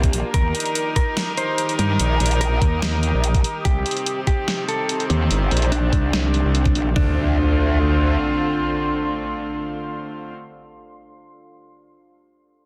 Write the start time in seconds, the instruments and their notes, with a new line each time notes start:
Already playing: wobble bass C2, string section A#3 D4 F4, ambient pad F4 A#4 D5 A#5, clean electric guitar G4
0.03 kick, closed hi-hat
0.13 wobble bass A#1, closed hi-hat
0.34 wobble bass D#2, string section D#3 D#4 G4 A#4, ambient pad G4, clean electric guitar A#4, kick, closed hi-hat
0.55 closed hi-hat
0.60 closed hi-hat
0.66 closed hi-hat
0.75 closed hi-hat
0.88 ambient pad D#6
0.96 clean electric guitar A#4, kick, closed hi-hat
1.17 snare, closed hi-hat
1.37 clean electric guitar C5, closed hi-hat
1.58 closed hi-hat
1.69 closed hi-hat
1.79 wobble bass G2, closed hi-hat
1.99 wobble bass A#1, closed hi-hat
2.20 wobble bass A#1, closed hi-hat
2.26 closed hi-hat
2.31 closed hi-hat
2.41 clean electric guitar A#4, closed hi-hat
2.62 wobble bass D#2, kick, closed hi-hat
2.82 wobble bass D#2, snare, closed hi-hat
3.03 closed hi-hat
3.14 wobble bass A#1
3.24 closed hi-hat
3.34 kick, closed hi-hat
3.44 closed hi-hat
3.65 wobble bass C2, string section C3 D#3 C4, clean electric guitar G4, kick, closed hi-hat
3.71 ambient pad C5
3.86 closed hi-hat
3.91 closed hi-hat
3.97 closed hi-hat
4.06 closed hi-hat
4.27 clean electric guitar G4, kick, closed hi-hat
4.48 snare, closed hi-hat
4.68 clean electric guitar A4, closed hi-hat
4.77 ambient pad C6
4.89 closed hi-hat
5.00 closed hi-hat
5.10 wobble bass D#2, closed hi-hat
5.31 wobble bass G1, closed hi-hat
5.51 wobble bass A#1, closed hi-hat
5.57 closed hi-hat
5.62 closed hi-hat
5.72 clean electric guitar D4, closed hi-hat
5.93 wobble bass C2, kick, closed hi-hat
6.13 wobble bass C2, snare, closed hi-hat
6.34 closed hi-hat
6.45 wobble bass C2
6.55 closed hi-hat
6.66 kick, closed hi-hat
6.75 wobble bass A#1, closed hi-hat
6.96 wobble bass D2, string section D3 A3 C4 F4, clean electric guitar D4, ambient pad A4, kick, impact
7.03 ambient pad D5
7.09 ambient pad F5
7.15 ambient pad C6